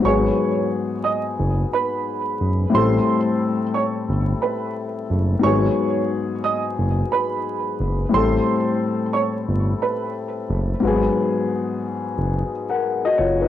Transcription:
0.00 G#2 F#3
0.04 G#1 B3 G#4 C#5 C#6
1.04 D#5 D#6
1.39 F#1
1.74 B4 B5
2.40 F#1
2.70 A2 G3
2.74 A1 C4 A4 C5 C6
3.74 C#5 C#6
4.09 G1
4.42 B4 B5
5.10 F#1
5.39 G#2 F#3
5.43 G#1 B3 G#4 C#5 C#6
6.44 D#5 D#6
6.79 F#1
7.12 B4 B5
7.80 F#1
8.09 A2 G3
8.14 A1 C4 A4 C5 C6
9.13 C#5 C#6
9.48 G1
9.82 B4 B5
10.49 F#1
10.80 G#1 G#2 F#3
10.85 B3 G#4
12.18 F#1
12.70 A#4 F#5
13.05 F#4 D#5
13.18 F#1 F4 C#5
13.42 D#4 B4

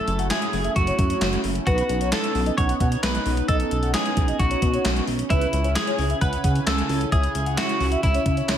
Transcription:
Already playing: F#3 A3 C#4 E4 A4
0.08 F#1, closed hi-hat
0.19 F#5, closed hi-hat
0.30 G#4 E5, snare, clap, closed hi-hat
0.42 closed hi-hat
0.53 F#1, open hi-hat
0.64 E5, closed hi-hat
0.76 F#1 F#4, kick, closed hi-hat
0.87 C#5, closed hi-hat
0.99 F#2, kick, closed hi-hat
1.10 C#5, closed hi-hat
1.21 F#1, snare, clap, closed hi-hat
1.33 closed hi-hat
1.44 F#1, open hi-hat
1.55 closed hi-hat
1.67 B1 B3 D#4 F#4 B4, kick, closed hi-hat
1.78 closed hi-hat
1.89 B1, closed hi-hat
2.01 C#5, closed hi-hat
2.12 A4, snare, clap, closed hi-hat
2.24 C#5, closed hi-hat
2.35 B1, open hi-hat
2.46 D#5, closed hi-hat
2.58 B1 C#5 F#5, kick, closed hi-hat
2.69 closed hi-hat
2.80 B2 F#5, kick, closed hi-hat
2.92 closed hi-hat
3.03 B1 B4, snare, clap, closed hi-hat
3.15 closed hi-hat
3.26 B1, open hi-hat
3.37 closed hi-hat
3.48 B1 A4 D#5, kick, closed hi-hat
3.60 closed hi-hat
3.71 B1, closed hi-hat
3.83 F#5, closed hi-hat
3.94 G#4 D#5, snare, clap, closed hi-hat
4.06 closed hi-hat
4.17 B1, kick, closed hi-hat
4.28 D#5, closed hi-hat
4.39 B1 F#4, kick, closed hi-hat
4.51 C#5, closed hi-hat
4.62 B2, kick, closed hi-hat
4.74 C#5, closed hi-hat
4.85 B1, snare, clap, closed hi-hat
4.97 closed hi-hat
5.07 B1, open hi-hat
5.19 closed hi-hat
5.30 C#2 C#3 E4 B4 G#5, kick, closed hi-hat
5.41 closed hi-hat
5.53 C#2, closed hi-hat
5.64 C#5, closed hi-hat
5.76 G#4, snare, clap, closed hi-hat
5.87 C#5, closed hi-hat
5.99 C#2, open hi-hat
6.10 E5, closed hi-hat
6.21 C#2 B4 F#5, kick, closed hi-hat
6.33 closed hi-hat
6.44 C#3 F#5, kick, closed hi-hat
6.55 closed hi-hat
6.67 C#2 A4, snare, clap, closed hi-hat
6.78 closed hi-hat
6.89 C#2, open hi-hat
7.01 closed hi-hat
7.12 C#2 G#4 E5, kick, closed hi-hat
7.23 closed hi-hat
7.35 C#2, closed hi-hat
7.46 F#5, closed hi-hat
7.58 F#4 E5, snare, clap, closed hi-hat
7.69 closed hi-hat
7.80 C#2, open hi-hat
7.92 E5, closed hi-hat
8.03 C#2 E4, kick, closed hi-hat
8.14 C#5, closed hi-hat
8.26 C#3, kick, closed hi-hat
8.37 C#5, closed hi-hat
8.49 C#2, snare, clap, closed hi-hat

